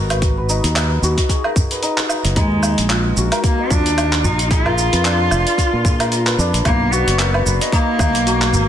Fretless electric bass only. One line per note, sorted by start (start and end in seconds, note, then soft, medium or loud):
0.00 0.59 G#1 medium
0.64 0.99 D#2 medium
1.02 1.15 D#2 medium
2.25 2.34 F#1 medium
2.36 2.74 D#2 medium
2.78 3.13 A#1 medium
3.17 3.29 A#1 medium
3.70 3.86 F#2 medium
3.86 4.26 D#2 medium
4.24 4.88 A#1 medium
4.93 5.28 F2 medium
5.32 5.44 F1 medium
5.73 6.35 A#2 medium
6.38 6.51 F2 medium
6.53 6.63 A#1 medium
6.65 7.02 B1 medium
7.07 7.42 F#1 medium
7.46 7.58 F#1 medium
7.99 8.14 D#2 medium
8.14 8.54 B1 medium
8.53 8.68 G#1 medium